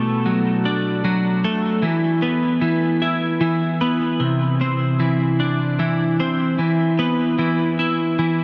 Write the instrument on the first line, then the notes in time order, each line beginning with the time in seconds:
clean electric guitar
Already playing: B2 A3
0.26 F#3
0.65 D4
1.04 F#3
1.44 A3
1.82 E3
2.22 B3
2.61 E3
3.02 E4
3.41 E3
3.81 B3
4.20 C3
4.61 C4
5.00 E3
5.40 D4
5.79 E3
6.20 C4
6.59 E3
6.99 B3
7.39 E3
7.79 E4
8.19 E3